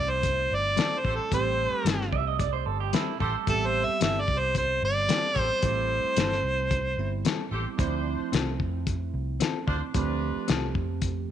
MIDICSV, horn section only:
0, 0, Header, 1, 2, 480
1, 0, Start_track
1, 0, Key_signature, 0, "minor"
1, 0, Tempo, 539568
1, 1172, Time_signature, 4, 2, 24, 8
1, 10063, End_track
2, 0, Start_track
2, 0, Title_t, "Horn section"
2, 0, Program_c, 0, 61
2, 937, Note_on_c, 0, 69, 62
2, 939, Note_on_c, 0, 67, 67
2, 949, Note_on_c, 0, 72, 83
2, 1058, Note_off_c, 0, 69, 0
2, 1059, Note_off_c, 0, 67, 0
2, 1064, Note_off_c, 0, 72, 0
2, 1172, Note_on_c, 0, 67, 61
2, 1177, Note_on_c, 0, 69, 64
2, 1184, Note_on_c, 0, 72, 79
2, 1653, Note_off_c, 0, 67, 0
2, 1655, Note_off_c, 0, 69, 0
2, 1659, Note_off_c, 0, 72, 0
2, 2842, Note_on_c, 0, 67, 80
2, 2850, Note_on_c, 0, 69, 75
2, 2851, Note_on_c, 0, 72, 87
2, 2971, Note_off_c, 0, 67, 0
2, 2975, Note_off_c, 0, 69, 0
2, 2976, Note_off_c, 0, 72, 0
2, 3074, Note_on_c, 0, 67, 71
2, 3081, Note_on_c, 0, 69, 64
2, 3089, Note_on_c, 0, 76, 80
2, 3564, Note_off_c, 0, 67, 0
2, 3567, Note_off_c, 0, 69, 0
2, 3571, Note_off_c, 0, 76, 0
2, 4747, Note_on_c, 0, 67, 72
2, 4751, Note_on_c, 0, 69, 66
2, 4756, Note_on_c, 0, 72, 82
2, 4883, Note_off_c, 0, 67, 0
2, 4885, Note_off_c, 0, 69, 0
2, 4888, Note_off_c, 0, 72, 0
2, 4991, Note_on_c, 0, 67, 65
2, 4999, Note_on_c, 0, 69, 61
2, 5000, Note_on_c, 0, 72, 70
2, 5482, Note_off_c, 0, 67, 0
2, 5486, Note_off_c, 0, 69, 0
2, 5486, Note_off_c, 0, 72, 0
2, 6679, Note_on_c, 0, 67, 76
2, 6682, Note_on_c, 0, 72, 82
2, 6685, Note_on_c, 0, 69, 73
2, 6809, Note_off_c, 0, 67, 0
2, 6810, Note_off_c, 0, 72, 0
2, 6812, Note_off_c, 0, 69, 0
2, 6907, Note_on_c, 0, 62, 77
2, 6926, Note_on_c, 0, 72, 92
2, 7399, Note_off_c, 0, 62, 0
2, 7409, Note_off_c, 0, 72, 0
2, 8596, Note_on_c, 0, 62, 79
2, 8604, Note_on_c, 0, 65, 77
2, 8608, Note_on_c, 0, 72, 94
2, 8726, Note_off_c, 0, 62, 0
2, 8730, Note_off_c, 0, 65, 0
2, 8732, Note_off_c, 0, 72, 0
2, 8843, Note_on_c, 0, 62, 80
2, 8843, Note_on_c, 0, 65, 76
2, 8851, Note_on_c, 0, 71, 97
2, 9326, Note_off_c, 0, 62, 0
2, 9326, Note_off_c, 0, 65, 0
2, 9330, Note_off_c, 0, 71, 0
2, 10063, End_track
0, 0, End_of_file